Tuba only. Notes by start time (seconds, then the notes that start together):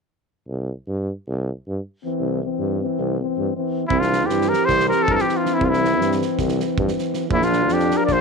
0.48 C2
0.88 G2
1.28 C2
1.68 G2
2.20 C2
2.59 G2
2.98 C2
3.38 G2
3.90 C2
4.29 G2
4.68 C2
5.08 G2
5.60 C2
6.00 G2
6.39 C2
6.79 G2
7.30 A#1
7.69 F2
8.08 A#1